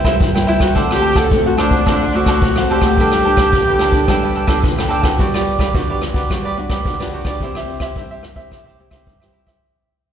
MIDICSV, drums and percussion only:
0, 0, Header, 1, 2, 480
1, 0, Start_track
1, 0, Key_signature, 1, "major"
1, 0, Tempo, 554017
1, 660, Time_signature, 4, 2, 24, 8
1, 8776, End_track
2, 0, Start_track
2, 0, Title_t, "Drums"
2, 40, Note_on_c, 9, 36, 68
2, 43, Note_on_c, 9, 37, 68
2, 126, Note_off_c, 9, 36, 0
2, 129, Note_off_c, 9, 37, 0
2, 178, Note_on_c, 9, 36, 92
2, 179, Note_on_c, 9, 42, 67
2, 264, Note_off_c, 9, 36, 0
2, 266, Note_off_c, 9, 42, 0
2, 307, Note_on_c, 9, 37, 68
2, 307, Note_on_c, 9, 42, 31
2, 393, Note_off_c, 9, 37, 0
2, 393, Note_off_c, 9, 42, 0
2, 411, Note_on_c, 9, 42, 54
2, 497, Note_off_c, 9, 42, 0
2, 521, Note_on_c, 9, 36, 65
2, 522, Note_on_c, 9, 37, 64
2, 522, Note_on_c, 9, 42, 30
2, 608, Note_off_c, 9, 36, 0
2, 609, Note_off_c, 9, 37, 0
2, 609, Note_off_c, 9, 42, 0
2, 657, Note_on_c, 9, 36, 67
2, 659, Note_on_c, 9, 42, 71
2, 744, Note_off_c, 9, 36, 0
2, 746, Note_off_c, 9, 42, 0
2, 785, Note_on_c, 9, 37, 64
2, 871, Note_off_c, 9, 37, 0
2, 892, Note_on_c, 9, 42, 51
2, 978, Note_off_c, 9, 42, 0
2, 999, Note_on_c, 9, 37, 64
2, 1001, Note_on_c, 9, 36, 68
2, 1086, Note_off_c, 9, 37, 0
2, 1088, Note_off_c, 9, 36, 0
2, 1138, Note_on_c, 9, 36, 87
2, 1140, Note_on_c, 9, 42, 66
2, 1225, Note_off_c, 9, 36, 0
2, 1227, Note_off_c, 9, 42, 0
2, 1266, Note_on_c, 9, 42, 32
2, 1353, Note_off_c, 9, 42, 0
2, 1370, Note_on_c, 9, 37, 71
2, 1370, Note_on_c, 9, 42, 54
2, 1457, Note_off_c, 9, 37, 0
2, 1457, Note_off_c, 9, 42, 0
2, 1481, Note_on_c, 9, 36, 69
2, 1481, Note_on_c, 9, 42, 34
2, 1568, Note_off_c, 9, 36, 0
2, 1568, Note_off_c, 9, 42, 0
2, 1617, Note_on_c, 9, 36, 71
2, 1617, Note_on_c, 9, 37, 71
2, 1617, Note_on_c, 9, 42, 68
2, 1703, Note_off_c, 9, 37, 0
2, 1703, Note_off_c, 9, 42, 0
2, 1704, Note_off_c, 9, 36, 0
2, 1743, Note_on_c, 9, 42, 33
2, 1829, Note_off_c, 9, 42, 0
2, 1846, Note_on_c, 9, 42, 50
2, 1933, Note_off_c, 9, 42, 0
2, 1958, Note_on_c, 9, 37, 69
2, 1958, Note_on_c, 9, 42, 31
2, 1960, Note_on_c, 9, 36, 65
2, 2045, Note_off_c, 9, 37, 0
2, 2045, Note_off_c, 9, 42, 0
2, 2047, Note_off_c, 9, 36, 0
2, 2093, Note_on_c, 9, 42, 67
2, 2096, Note_on_c, 9, 36, 93
2, 2179, Note_off_c, 9, 42, 0
2, 2183, Note_off_c, 9, 36, 0
2, 2215, Note_on_c, 9, 37, 67
2, 2215, Note_on_c, 9, 42, 30
2, 2301, Note_off_c, 9, 37, 0
2, 2301, Note_off_c, 9, 42, 0
2, 2323, Note_on_c, 9, 42, 50
2, 2410, Note_off_c, 9, 42, 0
2, 2436, Note_on_c, 9, 37, 69
2, 2440, Note_on_c, 9, 36, 68
2, 2523, Note_off_c, 9, 37, 0
2, 2527, Note_off_c, 9, 36, 0
2, 2573, Note_on_c, 9, 42, 60
2, 2578, Note_on_c, 9, 36, 69
2, 2659, Note_off_c, 9, 42, 0
2, 2664, Note_off_c, 9, 36, 0
2, 2697, Note_on_c, 9, 37, 64
2, 2697, Note_on_c, 9, 42, 28
2, 2784, Note_off_c, 9, 37, 0
2, 2784, Note_off_c, 9, 42, 0
2, 2808, Note_on_c, 9, 42, 47
2, 2894, Note_off_c, 9, 42, 0
2, 2918, Note_on_c, 9, 37, 70
2, 2918, Note_on_c, 9, 42, 30
2, 2922, Note_on_c, 9, 36, 70
2, 3004, Note_off_c, 9, 37, 0
2, 3004, Note_off_c, 9, 42, 0
2, 3009, Note_off_c, 9, 36, 0
2, 3057, Note_on_c, 9, 42, 57
2, 3058, Note_on_c, 9, 36, 84
2, 3144, Note_off_c, 9, 36, 0
2, 3144, Note_off_c, 9, 42, 0
2, 3182, Note_on_c, 9, 42, 27
2, 3269, Note_off_c, 9, 42, 0
2, 3284, Note_on_c, 9, 37, 71
2, 3284, Note_on_c, 9, 42, 47
2, 3371, Note_off_c, 9, 37, 0
2, 3371, Note_off_c, 9, 42, 0
2, 3395, Note_on_c, 9, 42, 30
2, 3399, Note_on_c, 9, 36, 66
2, 3481, Note_off_c, 9, 42, 0
2, 3485, Note_off_c, 9, 36, 0
2, 3534, Note_on_c, 9, 37, 68
2, 3534, Note_on_c, 9, 42, 69
2, 3536, Note_on_c, 9, 36, 70
2, 3621, Note_off_c, 9, 37, 0
2, 3621, Note_off_c, 9, 42, 0
2, 3623, Note_off_c, 9, 36, 0
2, 3659, Note_on_c, 9, 42, 33
2, 3746, Note_off_c, 9, 42, 0
2, 3764, Note_on_c, 9, 42, 49
2, 3850, Note_off_c, 9, 42, 0
2, 3877, Note_on_c, 9, 37, 69
2, 3879, Note_on_c, 9, 36, 72
2, 3964, Note_off_c, 9, 37, 0
2, 3966, Note_off_c, 9, 36, 0
2, 4016, Note_on_c, 9, 42, 67
2, 4017, Note_on_c, 9, 36, 89
2, 4103, Note_off_c, 9, 42, 0
2, 4104, Note_off_c, 9, 36, 0
2, 4145, Note_on_c, 9, 37, 66
2, 4145, Note_on_c, 9, 42, 33
2, 4231, Note_off_c, 9, 37, 0
2, 4231, Note_off_c, 9, 42, 0
2, 4251, Note_on_c, 9, 42, 51
2, 4338, Note_off_c, 9, 42, 0
2, 4361, Note_on_c, 9, 36, 67
2, 4362, Note_on_c, 9, 37, 63
2, 4362, Note_on_c, 9, 42, 32
2, 4448, Note_off_c, 9, 36, 0
2, 4449, Note_off_c, 9, 37, 0
2, 4449, Note_off_c, 9, 42, 0
2, 4499, Note_on_c, 9, 36, 68
2, 4504, Note_on_c, 9, 42, 67
2, 4586, Note_off_c, 9, 36, 0
2, 4590, Note_off_c, 9, 42, 0
2, 4628, Note_on_c, 9, 37, 62
2, 4628, Note_on_c, 9, 42, 30
2, 4715, Note_off_c, 9, 37, 0
2, 4715, Note_off_c, 9, 42, 0
2, 4735, Note_on_c, 9, 42, 49
2, 4822, Note_off_c, 9, 42, 0
2, 4843, Note_on_c, 9, 36, 65
2, 4850, Note_on_c, 9, 37, 66
2, 4850, Note_on_c, 9, 42, 32
2, 4930, Note_off_c, 9, 36, 0
2, 4937, Note_off_c, 9, 37, 0
2, 4937, Note_off_c, 9, 42, 0
2, 4978, Note_on_c, 9, 36, 84
2, 4980, Note_on_c, 9, 42, 63
2, 5065, Note_off_c, 9, 36, 0
2, 5066, Note_off_c, 9, 42, 0
2, 5211, Note_on_c, 9, 37, 63
2, 5211, Note_on_c, 9, 42, 48
2, 5297, Note_off_c, 9, 37, 0
2, 5297, Note_off_c, 9, 42, 0
2, 5322, Note_on_c, 9, 36, 66
2, 5408, Note_off_c, 9, 36, 0
2, 5459, Note_on_c, 9, 36, 65
2, 5463, Note_on_c, 9, 37, 64
2, 5463, Note_on_c, 9, 42, 62
2, 5545, Note_off_c, 9, 36, 0
2, 5549, Note_off_c, 9, 37, 0
2, 5549, Note_off_c, 9, 42, 0
2, 5694, Note_on_c, 9, 42, 47
2, 5781, Note_off_c, 9, 42, 0
2, 5801, Note_on_c, 9, 36, 66
2, 5803, Note_on_c, 9, 37, 69
2, 5803, Note_on_c, 9, 42, 29
2, 5888, Note_off_c, 9, 36, 0
2, 5889, Note_off_c, 9, 37, 0
2, 5889, Note_off_c, 9, 42, 0
2, 5938, Note_on_c, 9, 36, 82
2, 5944, Note_on_c, 9, 42, 65
2, 6025, Note_off_c, 9, 36, 0
2, 6030, Note_off_c, 9, 42, 0
2, 6067, Note_on_c, 9, 37, 62
2, 6067, Note_on_c, 9, 42, 29
2, 6154, Note_off_c, 9, 37, 0
2, 6154, Note_off_c, 9, 42, 0
2, 6171, Note_on_c, 9, 42, 48
2, 6258, Note_off_c, 9, 42, 0
2, 6279, Note_on_c, 9, 37, 59
2, 6279, Note_on_c, 9, 42, 25
2, 6280, Note_on_c, 9, 36, 64
2, 6366, Note_off_c, 9, 37, 0
2, 6366, Note_off_c, 9, 42, 0
2, 6367, Note_off_c, 9, 36, 0
2, 6412, Note_on_c, 9, 42, 57
2, 6415, Note_on_c, 9, 36, 57
2, 6498, Note_off_c, 9, 42, 0
2, 6502, Note_off_c, 9, 36, 0
2, 6540, Note_on_c, 9, 37, 60
2, 6627, Note_off_c, 9, 37, 0
2, 6647, Note_on_c, 9, 42, 44
2, 6734, Note_off_c, 9, 42, 0
2, 6756, Note_on_c, 9, 37, 63
2, 6756, Note_on_c, 9, 42, 27
2, 6759, Note_on_c, 9, 36, 64
2, 6843, Note_off_c, 9, 37, 0
2, 6843, Note_off_c, 9, 42, 0
2, 6846, Note_off_c, 9, 36, 0
2, 6891, Note_on_c, 9, 42, 54
2, 6896, Note_on_c, 9, 36, 75
2, 6978, Note_off_c, 9, 42, 0
2, 6983, Note_off_c, 9, 36, 0
2, 7021, Note_on_c, 9, 42, 28
2, 7107, Note_off_c, 9, 42, 0
2, 7128, Note_on_c, 9, 37, 65
2, 7128, Note_on_c, 9, 42, 43
2, 7215, Note_off_c, 9, 37, 0
2, 7215, Note_off_c, 9, 42, 0
2, 7241, Note_on_c, 9, 42, 27
2, 7242, Note_on_c, 9, 36, 65
2, 7328, Note_off_c, 9, 42, 0
2, 7329, Note_off_c, 9, 36, 0
2, 7377, Note_on_c, 9, 37, 65
2, 7377, Note_on_c, 9, 42, 59
2, 7378, Note_on_c, 9, 36, 62
2, 7464, Note_off_c, 9, 37, 0
2, 7464, Note_off_c, 9, 42, 0
2, 7465, Note_off_c, 9, 36, 0
2, 7612, Note_on_c, 9, 42, 42
2, 7699, Note_off_c, 9, 42, 0
2, 7720, Note_on_c, 9, 37, 62
2, 7720, Note_on_c, 9, 42, 28
2, 7721, Note_on_c, 9, 36, 60
2, 7806, Note_off_c, 9, 37, 0
2, 7806, Note_off_c, 9, 42, 0
2, 7808, Note_off_c, 9, 36, 0
2, 7855, Note_on_c, 9, 42, 59
2, 7858, Note_on_c, 9, 36, 82
2, 7941, Note_off_c, 9, 42, 0
2, 7944, Note_off_c, 9, 36, 0
2, 7983, Note_on_c, 9, 37, 58
2, 8070, Note_off_c, 9, 37, 0
2, 8090, Note_on_c, 9, 42, 44
2, 8176, Note_off_c, 9, 42, 0
2, 8203, Note_on_c, 9, 36, 60
2, 8203, Note_on_c, 9, 37, 58
2, 8289, Note_off_c, 9, 37, 0
2, 8290, Note_off_c, 9, 36, 0
2, 8776, End_track
0, 0, End_of_file